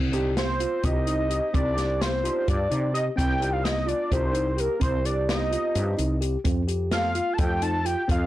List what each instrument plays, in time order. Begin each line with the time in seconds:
Already playing: fretless electric bass C2
0.12 grand piano C4 D4 D#4 G4, tine electric piano G4, closed hi-hat
0.37 analog synth lead C5, snare, closed hi-hat
0.60 tine electric piano F4, closed hi-hat
0.83 fretless electric bass C2, grand piano C4 D#4 G4, analog synth lead D#5, kick, closed hi-hat
1.07 tine electric piano D#4, closed hi-hat
1.30 tine electric piano G4, closed hi-hat
1.54 fretless electric bass C2, tine electric piano C4, grand piano C4 D4 D#4 G4, analog synth lead D5, kick, closed hi-hat
1.77 tine electric piano G4, snare, closed hi-hat
2.01 analog synth lead C5, snare, closed hi-hat
2.23 grand piano C4 D4 D#4 G4, tine electric piano F4, closed hi-hat
2.48 fretless electric bass G2, analog synth lead D5, kick, closed hi-hat
2.70 fretless electric bass C3, tine electric piano D#4, closed hi-hat
2.94 tine electric piano G4, analog synth lead D#5, closed hi-hat
3.16 fretless electric bass C2, tine electric piano C4, analog synth lead G5, kick, closed hi-hat
3.40 grand piano C4 D4 D#4 F4, tine electric piano G4, closed hi-hat
3.53 analog synth lead F5
3.64 analog synth lead D#5, snare, closed hi-hat
3.86 tine electric piano F4, analog synth lead D5, closed hi-hat
4.12 fretless electric bass C2, grand piano C4 D4 D#4 G4, analog synth lead C5, kick, closed hi-hat
4.33 tine electric piano D#4, closed hi-hat
4.57 tine electric piano G4, analog synth lead A#4, closed hi-hat
4.80 fretless electric bass C2, tine electric piano C4, analog synth lead C5, kick, closed hi-hat
5.04 tine electric piano G4, analog synth lead D5, closed hi-hat
5.28 grand piano C4 D#4 G4, analog synth lead D#5, snare, closed hi-hat
5.51 tine electric piano F4, closed hi-hat
5.75 fretless electric bass G2, grand piano C4 D4 D#4 G4, closed hi-hat
5.98 fretless electric bass C2, tine electric piano D#4, closed hi-hat
6.21 tine electric piano G4, closed hi-hat
6.45 fretless electric bass F2, tine electric piano C4, kick, closed hi-hat
6.68 tine electric piano G4, closed hi-hat
6.91 grand piano A3 C4 F4 A4, analog synth lead F5, snare, closed hi-hat
7.15 tine electric piano F4, closed hi-hat
7.33 analog synth lead A5
7.38 fretless electric bass F2, grand piano A3 C4 F4 A4, analog synth lead G5, kick, closed hi-hat
7.62 tine electric piano D#4, analog synth lead A5, closed hi-hat
7.85 tine electric piano F4, analog synth lead G5, closed hi-hat
8.08 fretless electric bass F2, tine electric piano C4, analog synth lead F5, kick, closed hi-hat